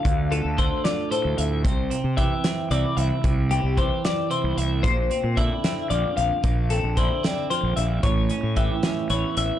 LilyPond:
<<
  \new Staff \with { instrumentName = "Clean electric guitar" } { \time 6/8 \key bes \lydian \tempo 4. = 75 f''8 a'8 c''8 d''8 c''8 e''8 | c''4 e''4 d''8 e''8~ | e''8 g'8 c''8 d''8 c''8 e''8 | c''4 e''4 d''8 f''8~ |
f''8 a'8 c''8 d''8 c''8 e''8 | cis''4 e''4 cis''8 e''8 | }
  \new Staff \with { instrumentName = "Clean electric guitar" } { \time 6/8 \key bes \lydian << { r8 f'8 a'8 f'8 a'4 | r8 c'8 g'8 c'8 e'4~ | e'8 c'8 g'8 c'8 e'4 | r8 c'8 e'8 c'8 f'4 |
r8 c'8 e'8 c'8 f'4 | r8 cis'8 g'8 cis'8 e'4 | } \\ { <d, d>4 d4 a,4 | c4 e4 c4 | c4 e4 c4 | bes,4 d4 f,4 |
bes,4 d4 f,4 | a,4 e4 e,4 | } >> }
  \new Staff \with { instrumentName = "Fingered electric bass" } { \clef bass \time 6/8 \key bes \lydian d,8. d,8 r4 d,16 d,8 | c,8 r16 c8 r8. c,16 r16 c,16 r16 | c,8. c,8 r4 c,16 c,8 | bes,,8 r16 bes,8 r8. bes,,16 r16 bes,,16 r16 |
bes,,8. bes,,8 r4 bes,,16 bes,,8 | a,,8 r16 a,8 r8. a,,16 r16 a,,16 r16 | }
  \new DrumStaff \with { instrumentName = "Drums" } \drummode { \time 6/8 <hh bd>8 hh8 <hh bd>8 <hh sn>8 hh8 hh8 | <hh bd>8 hh8 <hh bd>8 <hh sn>8 hh8 hh8 | <hh bd>8 hh8 <hh bd>8 <hh sn>8 hh8 hh8 | <hh bd>8 hh8 <hh bd>8 <hh sn>8 hh8 hh8 |
<hh bd>8 hh8 <hh bd>8 <hh sn>8 hh8 hh8 | <hh bd>8 hh8 <hh bd>8 <hh sn>8 hh8 hh8 | }
>>